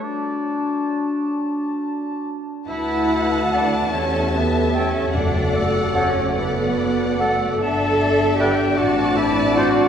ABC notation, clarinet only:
X:1
M:6/8
L:1/8
Q:3/8=49
K:D
V:1 name="Clarinet"
F4- F z | e2 d c B c | d A c B2 A | a2 g f e f |]